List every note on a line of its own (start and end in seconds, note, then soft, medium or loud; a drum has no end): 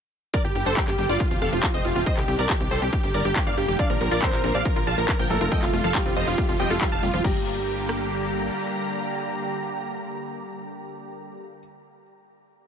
0.34 1.19 D3 medium
0.34 1.19 G3 medium
0.34 1.19 A#3 medium
0.34 1.19 G4 medium
0.34 0.43 A#4 medium
0.34 0.43 D5 loud
0.34 kick loud
0.34 closed hi-hat medium
0.44 0.53 G1 medium
0.44 0.53 G4 medium
0.44 closed hi-hat medium
0.55 0.64 G1 loud
0.55 0.64 G4 medium
0.55 open hi-hat loud
0.66 0.75 G1 medium
0.66 0.75 A4 medium
0.66 0.75 C5 medium
0.66 closed hi-hat medium
0.77 0.86 G4 medium
0.77 kick loud
0.77 clap loud
0.77 closed hi-hat medium
0.88 0.96 G1 medium
0.88 0.97 G4 medium
0.88 clap soft
0.88 closed hi-hat medium
0.98 1.07 G1 loud
0.98 1.07 G4 medium
0.98 open hi-hat loud
1.09 1.18 G1 medium
1.09 1.18 F4 medium
1.09 1.18 D5 medium
1.09 closed hi-hat medium
1.20 2.06 F3 medium
1.20 2.06 A3 medium
1.20 2.91 C4 medium
1.20 1.29 F4 medium
1.20 2.05 G4 medium
1.20 kick loud
1.20 closed hi-hat medium
1.31 1.39 F1 medium
1.31 1.40 F4 medium
1.31 closed hi-hat medium
1.42 1.50 F1 loud
1.42 1.51 A4 medium
1.42 1.51 F5 loud
1.42 open hi-hat loud
1.52 1.61 F1 loud
1.52 1.61 F4 medium
1.52 closed hi-hat medium
1.63 1.72 F4 medium
1.63 kick loud
1.63 clap loud
1.63 closed hi-hat medium
1.74 1.83 F1 medium
1.74 1.83 C5 medium
1.74 1.83 D#5 loud
1.74 1.83 D#5 medium
1.74 closed hi-hat medium
1.85 1.93 F1 loud
1.85 1.94 F4 medium
1.85 open hi-hat loud
1.95 2.04 D#1 medium
1.95 2.04 F4 medium
1.95 2.05 F4 medium
1.95 closed hi-hat medium
2.06 2.92 D#3 medium
2.06 2.92 D4 medium
2.06 3.77 G4 medium
2.06 2.15 C5 medium
2.06 2.15 D#5 loud
2.06 2.15 D#5 medium
2.06 kick loud
2.06 closed hi-hat medium
2.17 2.26 C2 medium
2.17 2.26 G4 medium
2.17 clap soft
2.17 closed hi-hat medium
2.28 2.37 C2 loud
2.28 2.37 G4 medium
2.28 open hi-hat loud
2.39 2.47 C2 medium
2.39 2.48 A#4 medium
2.39 2.48 D5 medium
2.39 closed hi-hat medium
2.49 2.58 G4 medium
2.49 kick loud
2.49 clap loud
2.49 closed hi-hat medium
2.60 2.69 C2 medium
2.60 2.69 G4 medium
2.60 closed hi-hat medium
2.71 2.80 C2 loud
2.71 2.80 A4 medium
2.71 2.80 C5 medium
2.71 open hi-hat loud
2.82 2.90 C2 medium
2.82 2.91 G4 medium
2.82 closed hi-hat medium
2.93 5.49 D3 medium
2.93 3.78 G3 medium
2.93 5.49 A#3 medium
2.93 3.02 G4 medium
2.93 kick loud
2.93 closed hi-hat medium
3.03 3.12 G1 medium
3.03 3.12 G4 medium
3.03 closed hi-hat medium
3.14 3.23 G1 loud
3.14 3.23 A#4 medium
3.14 3.23 D5 loud
3.14 open hi-hat loud
3.25 3.34 G1 medium
3.25 3.34 G4 medium
3.25 closed hi-hat medium
3.36 3.45 G4 medium
3.36 kick loud
3.36 clap loud
3.36 open hi-hat medium
3.47 3.55 G1 medium
3.47 3.56 D5 medium
3.47 3.56 F5 loud
3.47 3.56 F5 medium
3.47 closed hi-hat medium
3.57 3.66 G1 loud
3.57 3.66 G4 medium
3.57 3.67 G4 medium
3.57 open hi-hat loud
3.68 3.77 F1 medium
3.68 3.77 G4 medium
3.79 5.50 F3 medium
3.79 4.20 D4 medium
3.79 3.86 D4 medium
3.79 5.50 F4 medium
3.79 4.20 D5 loud
3.79 3.88 D5 medium
3.79 3.88 F5 loud
3.79 kick loud
3.79 closed hi-hat medium
3.90 3.98 A#1 medium
3.90 3.94 F3 loud
3.90 3.99 A#4 medium
3.90 closed hi-hat medium
4.00 4.09 A#1 loud
4.00 4.10 A#4 medium
4.00 open hi-hat loud
4.11 4.20 A#1 loud
4.11 4.16 F4 loud
4.11 4.20 A#4 medium
4.11 4.20 D5 loud
4.11 4.21 D5 medium
4.11 closed hi-hat medium
4.22 4.30 F3 medium
4.22 4.63 C4 medium
4.22 4.31 A#4 medium
4.22 4.63 C5 medium
4.22 kick loud
4.22 clap loud
4.22 closed hi-hat medium
4.33 4.42 A#1 medium
4.33 4.42 A#4 medium
4.33 clap soft
4.33 closed hi-hat medium
4.44 4.52 A#1 loud
4.44 4.51 D4 medium
4.44 4.53 A#4 medium
4.44 open hi-hat loud
4.55 4.63 A#1 loud
4.55 4.59 F3 loud
4.55 4.64 D5 medium
4.55 4.64 F5 medium
4.55 4.64 F5 loud
4.55 closed hi-hat medium
4.65 4.74 A#4 medium
4.65 kick loud
4.65 closed hi-hat medium
4.76 4.85 A#1 medium
4.76 4.81 F4 loud
4.76 4.85 A#4 medium
4.76 closed hi-hat medium
4.87 4.95 A#1 loud
4.87 4.94 F3 medium
4.87 4.96 F5 medium
4.87 4.96 A5 loud
4.87 open hi-hat loud
4.98 5.06 A#1 medium
4.98 5.07 A#4 medium
4.98 closed hi-hat medium
5.08 5.16 D4 medium
5.08 5.18 A#4 medium
5.08 kick loud
5.08 clap loud
5.08 closed hi-hat medium
5.19 5.28 A#1 medium
5.19 5.24 F3 loud
5.19 5.28 A#4 medium
5.19 5.28 G5 loud
5.19 closed hi-hat medium
5.30 5.39 A#1 loud
5.30 5.86 A3 medium
5.30 5.86 A4 medium
5.30 5.39 A#4 medium
5.30 open hi-hat loud
5.41 5.49 F1 loud
5.41 5.45 F4 loud
5.41 5.50 A#4 medium
5.41 closed hi-hat medium
5.52 7.23 C3 medium
5.52 5.59 F3 medium
5.52 7.23 G3 medium
5.52 7.23 A3 medium
5.52 7.23 F4 medium
5.52 5.61 D#5 medium
5.52 5.61 G5 loud
5.52 5.61 G5 medium
5.52 kick loud
5.52 closed hi-hat medium
5.62 5.71 F1 medium
5.62 5.71 F4 medium
5.62 clap soft
5.62 closed hi-hat medium
5.73 5.82 F1 loud
5.73 5.81 A3 medium
5.73 5.82 F4 medium
5.73 open hi-hat loud
5.84 5.93 F1 medium
5.84 5.88 F3 loud
5.84 5.93 A4 medium
5.84 5.93 F5 medium
5.95 6.51 G3 medium
5.95 6.04 F4 medium
5.95 6.51 G4 loud
5.95 kick loud
5.95 clap loud
5.95 closed hi-hat medium
6.06 6.14 F1 medium
6.06 6.10 C4 loud
6.06 6.15 F4 medium
6.06 closed hi-hat medium
6.16 6.25 F1 loud
6.16 6.24 F3 medium
6.16 6.25 C5 medium
6.16 6.25 D#5 loud
6.16 6.25 D#5 medium
6.16 open hi-hat loud
6.27 6.36 F1 loud
6.27 6.36 F4 medium
6.27 closed hi-hat medium
6.38 6.45 A3 medium
6.38 6.47 F4 medium
6.38 kick loud
6.38 closed hi-hat medium
6.49 6.57 F1 medium
6.49 6.53 F3 loud
6.49 6.58 F4 medium
6.49 closed hi-hat medium
6.60 6.68 F1 loud
6.60 6.67 F3 loud
6.60 7.16 G3 medium
6.60 7.16 G4 medium
6.60 6.69 D#5 medium
6.60 6.68 G5 medium
6.60 6.69 G5 loud
6.60 open hi-hat loud
6.70 6.79 F1 medium
6.70 6.79 F4 medium
6.70 6.78 A4 loud
6.81 6.88 F3 medium
6.81 6.90 F4 medium
6.81 kick loud
6.81 clap loud
6.81 open hi-hat medium
6.92 7.01 F1 medium
6.92 7.01 F5 medium
6.92 7.01 A5 loud
6.92 closed hi-hat medium
7.03 7.11 F1 loud
7.03 7.10 G3 medium
7.03 7.12 F4 medium
7.03 open hi-hat loud
7.13 7.22 D#1 medium
7.13 7.18 F3 loud
7.13 7.22 F4 medium
7.13 7.23 F4 medium
7.13 closed hi-hat soft
7.24 8.50 G1 medium
7.24 11.46 D3 medium
7.24 7.44 G3 medium
7.24 11.46 G3 medium
7.24 11.46 A#3 medium
7.24 11.46 G4 medium
7.24 11.58 G4 medium
7.24 11.46 A#5 loud
7.24 11.58 A#5 medium
7.24 kick loud
7.24 crash medium
7.89 cross-stick medium